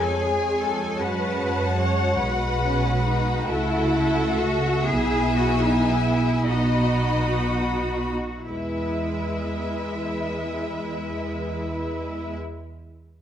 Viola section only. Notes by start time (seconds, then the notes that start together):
Already playing: G#3 G#4
0.99 F#4
3.49 A3
4.88 B3 E4
6.47 B3 D#4
8.48 G#3